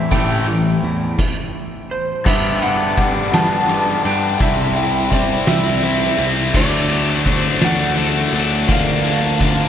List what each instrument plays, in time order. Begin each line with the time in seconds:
Already playing: picked electric bass E2, clean electric guitar E3 G3 C4, analog synth pad A3 G4 C5, electric slide guitar E5
0.11 picked electric bass A1, overdriven electric guitar A2 E3 A3, clean electric guitar A2, electric slide guitar G5, kick
0.47 overdriven electric guitar A2 E3, clean electric guitar G3
0.83 picked electric bass E2, clean electric guitar E3
1.18 kick, crash
1.91 electric slide guitar C5
2.25 overdriven electric guitar G2 D3 G3 B3 D4, picked electric bass G2, analog synth pad G4 B4 D5, electric slide guitar E5, kick, crash
2.60 overdriven electric guitar G3 B3 D4, electric slide guitar F#5, ride
2.97 overdriven electric guitar D3 G3 B3 D4, kick, ride
3.32 picked electric bass G2, overdriven electric guitar G3 B3 D4, electric slide guitar A5, snare, ride
3.68 overdriven electric guitar D3 G3 B3 D4, ride
4.04 picked electric bass G2, overdriven electric guitar G3 B3 D4, electric slide guitar G5, ride
4.39 picked electric bass C2, overdriven electric guitar C3 G3 C4 E4, analog synth pad E4 C5 B5, electric slide guitar E5, kick, ride
4.76 overdriven electric guitar G3 C4 E4, ride
5.11 overdriven electric guitar C3 G3 C4 E4, electric slide guitar D5, kick, ride
5.47 picked electric bass C2, overdriven electric guitar G3 C4 E4, electric slide guitar E5, snare, ride
5.82 overdriven electric guitar C3 G3 C4 E4, ride
6.18 picked electric bass C2, overdriven electric guitar G3 C4 E4, ride
6.54 picked electric bass D2, overdriven electric guitar D3 F#3 A3 D4, analog synth pad F#4 D5 A5, electric slide guitar D5, kick, crash
6.89 overdriven electric guitar F#3 A3 D4, ride
7.25 overdriven electric guitar D3 F#3 A3 D4, kick, ride
7.33 electric slide guitar C5
7.60 picked electric bass D2, overdriven electric guitar F#3 A3 D4, snare, ride
7.65 electric slide guitar F#5
7.95 overdriven electric guitar D3 F#3 A3 D4, ride
8.33 picked electric bass D2, overdriven electric guitar F#3 A3 D4, ride
8.68 picked electric bass D2, overdriven electric guitar D3 F3 A#3 D4, analog synth pad D4 A#4 A5, electric slide guitar F5, kick, ride
9.04 overdriven electric guitar F3 A#3 D4, ride
9.40 overdriven electric guitar D3 F3 A#3 D4, kick, ride